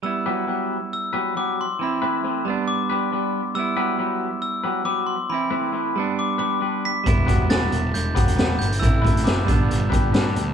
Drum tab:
HH |----------------|----------------|----------------|----------------|
SD |----------------|----------------|----------------|----------------|
BD |----------------|----------------|----------------|----------------|

HH |x-x-x-x-x-xxx-xx|x-xxx-x-x-x-x-x-|
SD |----o-------o---|----o-------o---|
BD |o-o-------o-----|o-o---o---o-----|